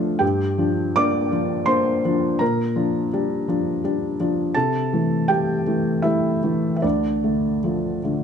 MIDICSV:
0, 0, Header, 1, 2, 480
1, 0, Start_track
1, 0, Tempo, 723764
1, 143, Time_signature, 3, 2, 24, 8
1, 3504, Tempo, 785340
1, 5309, End_track
2, 0, Start_track
2, 0, Title_t, "Felt piano"
2, 0, Program_c, 0, 0
2, 0, Control_c, 0, 64, 127
2, 0, Note_on_c, 0, 50, 43
2, 0, Note_on_c, 0, 53, 38
2, 0, Note_on_c, 0, 57, 38
2, 0, Note_on_c, 0, 62, 42
2, 0, Note_on_c, 0, 65, 51
2, 0, Note_on_c, 0, 69, 58
2, 0, Note_on_c, 0, 77, 69
2, 0, Note_on_c, 0, 81, 66
2, 116, Note_off_c, 0, 53, 0
2, 118, Note_off_c, 0, 50, 0
2, 118, Note_off_c, 0, 62, 0
2, 125, Note_on_c, 0, 79, 64
2, 131, Note_on_c, 0, 67, 55
2, 135, Note_on_c, 0, 43, 47
2, 156, Control_c, 0, 64, 0
2, 158, Note_off_c, 0, 57, 0
2, 158, Note_off_c, 0, 69, 0
2, 159, Note_off_c, 0, 77, 0
2, 161, Note_off_c, 0, 65, 0
2, 163, Note_off_c, 0, 81, 0
2, 258, Control_c, 0, 64, 127
2, 384, Note_on_c, 0, 53, 38
2, 390, Note_on_c, 0, 62, 39
2, 607, Note_off_c, 0, 67, 0
2, 611, Note_off_c, 0, 53, 0
2, 615, Note_off_c, 0, 62, 0
2, 631, Note_off_c, 0, 79, 0
2, 635, Note_on_c, 0, 86, 89
2, 641, Note_on_c, 0, 74, 63
2, 644, Note_on_c, 0, 58, 38
2, 648, Note_on_c, 0, 62, 45
2, 857, Note_off_c, 0, 58, 0
2, 859, Note_off_c, 0, 62, 0
2, 874, Note_on_c, 0, 62, 40
2, 875, Note_on_c, 0, 53, 37
2, 1088, Note_off_c, 0, 62, 0
2, 1089, Note_off_c, 0, 53, 0
2, 1089, Note_off_c, 0, 74, 0
2, 1099, Note_on_c, 0, 84, 76
2, 1109, Note_on_c, 0, 58, 37
2, 1109, Note_on_c, 0, 72, 60
2, 1112, Note_off_c, 0, 86, 0
2, 1112, Note_on_c, 0, 62, 40
2, 1326, Note_off_c, 0, 58, 0
2, 1328, Note_off_c, 0, 62, 0
2, 1360, Note_on_c, 0, 53, 38
2, 1360, Note_on_c, 0, 62, 42
2, 1564, Note_off_c, 0, 43, 0
2, 1566, Note_off_c, 0, 72, 0
2, 1574, Note_off_c, 0, 53, 0
2, 1575, Note_off_c, 0, 62, 0
2, 1585, Note_on_c, 0, 82, 66
2, 1587, Note_off_c, 0, 84, 0
2, 1594, Note_on_c, 0, 70, 48
2, 1598, Note_on_c, 0, 46, 47
2, 1608, Control_c, 0, 64, 0
2, 1716, Control_c, 0, 64, 127
2, 1829, Note_on_c, 0, 53, 35
2, 1831, Note_on_c, 0, 62, 39
2, 2044, Note_off_c, 0, 53, 0
2, 2045, Note_off_c, 0, 62, 0
2, 2079, Note_on_c, 0, 55, 39
2, 2079, Note_on_c, 0, 62, 42
2, 2283, Note_off_c, 0, 55, 0
2, 2283, Note_off_c, 0, 62, 0
2, 2307, Note_on_c, 0, 53, 36
2, 2314, Note_on_c, 0, 62, 43
2, 2514, Note_off_c, 0, 53, 0
2, 2518, Note_off_c, 0, 62, 0
2, 2545, Note_on_c, 0, 55, 37
2, 2550, Note_on_c, 0, 62, 39
2, 2744, Note_off_c, 0, 70, 0
2, 2754, Note_off_c, 0, 55, 0
2, 2757, Note_off_c, 0, 62, 0
2, 2767, Note_off_c, 0, 82, 0
2, 2786, Note_on_c, 0, 53, 35
2, 2787, Note_on_c, 0, 62, 36
2, 2988, Note_off_c, 0, 46, 0
2, 2997, Note_off_c, 0, 53, 0
2, 2998, Note_off_c, 0, 62, 0
2, 3014, Note_on_c, 0, 81, 75
2, 3023, Control_c, 0, 64, 0
2, 3024, Note_on_c, 0, 69, 51
2, 3026, Note_on_c, 0, 48, 44
2, 3119, Control_c, 0, 64, 127
2, 3270, Note_on_c, 0, 52, 31
2, 3272, Note_on_c, 0, 57, 35
2, 3482, Note_off_c, 0, 69, 0
2, 3486, Note_off_c, 0, 52, 0
2, 3488, Note_off_c, 0, 57, 0
2, 3503, Note_on_c, 0, 79, 70
2, 3504, Note_off_c, 0, 81, 0
2, 3508, Note_on_c, 0, 67, 57
2, 3512, Note_on_c, 0, 55, 35
2, 3514, Note_on_c, 0, 57, 39
2, 3717, Note_off_c, 0, 55, 0
2, 3718, Note_off_c, 0, 57, 0
2, 3739, Note_on_c, 0, 52, 31
2, 3742, Note_on_c, 0, 57, 36
2, 3947, Note_off_c, 0, 67, 0
2, 3948, Note_off_c, 0, 52, 0
2, 3950, Note_off_c, 0, 57, 0
2, 3957, Note_on_c, 0, 76, 60
2, 3962, Note_on_c, 0, 64, 47
2, 3968, Note_on_c, 0, 55, 31
2, 3969, Note_off_c, 0, 79, 0
2, 3970, Note_on_c, 0, 57, 34
2, 4184, Note_off_c, 0, 55, 0
2, 4185, Note_off_c, 0, 57, 0
2, 4205, Note_on_c, 0, 52, 30
2, 4210, Note_on_c, 0, 57, 35
2, 4378, Note_off_c, 0, 64, 0
2, 4399, Note_off_c, 0, 76, 0
2, 4409, Note_on_c, 0, 76, 39
2, 4427, Note_off_c, 0, 52, 0
2, 4430, Note_off_c, 0, 57, 0
2, 4435, Note_off_c, 0, 48, 0
2, 4444, Note_on_c, 0, 74, 49
2, 4446, Note_on_c, 0, 62, 41
2, 4451, Note_on_c, 0, 38, 41
2, 4455, Note_off_c, 0, 76, 0
2, 4465, Control_c, 0, 64, 0
2, 4563, Control_c, 0, 64, 127
2, 4699, Note_on_c, 0, 50, 27
2, 4700, Note_on_c, 0, 57, 30
2, 4917, Note_off_c, 0, 50, 0
2, 4918, Note_off_c, 0, 57, 0
2, 4942, Note_on_c, 0, 53, 31
2, 4944, Note_on_c, 0, 57, 32
2, 5159, Note_off_c, 0, 53, 0
2, 5160, Note_off_c, 0, 57, 0
2, 5186, Note_on_c, 0, 50, 29
2, 5191, Note_on_c, 0, 57, 31
2, 5309, Note_off_c, 0, 38, 0
2, 5309, Note_off_c, 0, 50, 0
2, 5309, Note_off_c, 0, 57, 0
2, 5309, Note_off_c, 0, 62, 0
2, 5309, Note_off_c, 0, 74, 0
2, 5309, End_track
0, 0, End_of_file